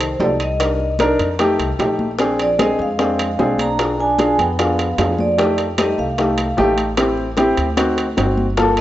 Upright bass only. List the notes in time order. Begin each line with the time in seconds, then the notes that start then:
Already playing: C2
0.20 C2
1.19 F2
1.59 C2
1.79 A#1
2.79 F2
3.39 B1
4.38 F2
4.98 F2
5.98 C2
6.58 A1
7.57 D2
8.18 G1